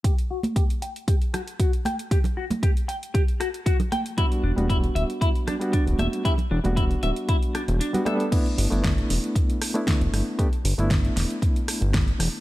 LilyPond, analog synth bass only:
\new Staff \with { instrumentName = "Analog synth bass" } { \clef bass \time 4/4 \key g \major \tempo 4 = 116 r1 | r1 | r8 e,,16 e,,8 r16 d,,16 r4. d,,16 e,,16 r16 | r8 e,,16 e,,8 r16 d,,16 r4 e,,16 r4 |
r8 g,,16 g,,8 r16 e,,16 r4. e,,16 g,,16 r16 | r8 g,,16 g,,8 r16 e,,16 r4 g,,8 r16 e,,16 r16 | }